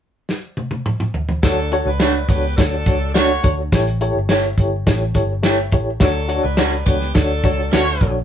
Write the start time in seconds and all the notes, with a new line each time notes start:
0.29 snare
0.57 high tom
0.71 high tom
0.86 mid tom
1.00 mid tom
1.14 floor tom
1.29 floor tom
1.43 D2 F#3 D4 F#4 A4 C#5, kick, snare, closed hi-hat
1.72 D4 F#4 A4 C#5, closed hi-hat
1.86 C#2 F#3 D4 B4
2.00 A3 D4 F#4 A4 C#5, snare, closed hi-hat
2.29 C#2 B3 D4 F#4 G4 A4 B4 C#5, kick, closed hi-hat
2.57 D2 F#3 D4 F#4 A4 C#5, kick, snare, closed hi-hat
2.86 C#2 D4 F#4 A4 C#5, kick, closed hi-hat
3.14 A3 D4 F#4 A4 C#5, snare, closed hi-hat
3.43 D2 D4 F#4 A4 C#5, kick, closed hi-hat
3.72 A1 E4 G4 A4 C#5, kick, snare, closed hi-hat
3.87 closed hi-hat
4.01 E4 G4 A4 C#5, closed hi-hat
4.15 G1
4.29 A3 E4 G4 A4 C#5, snare, closed hi-hat
4.44 closed hi-hat
4.58 G1 E4 G4 A4 C#5, kick, closed hi-hat
4.86 A1 E4 G4 A4 C#5, kick, snare, closed hi-hat
5.14 G1 E4 G4 A4 C#5, kick, closed hi-hat
5.43 A3 E4 G4 A4 C#5, snare, closed hi-hat
5.72 A1 E4 G4 A4 C#5, kick, closed hi-hat
6.00 D2 F#3 D4 F#4 A4 C#5, kick, snare, closed hi-hat
6.28 D4 F#4 A4 C#5, closed hi-hat
6.43 C#2 F#3 D4 B4
6.57 C#4 D4 F#4 A4 C#5, snare, closed hi-hat
6.72 closed hi-hat
6.86 C#2 B3 D4 F#4 G4 A4 B4 C#5, kick, closed hi-hat
7.01 snare
7.15 D2 F#3 D4 F#4 A4 C#5, kick, snare, closed hi-hat
7.44 C#2 D4 F#4 A4 C#5, kick, closed hi-hat
7.72 D2 A3 C#4 D4 F#4 A4 C#5, snare, closed hi-hat
8.00 A#1 D4 F#4 A4 C#5, kick, closed hi-hat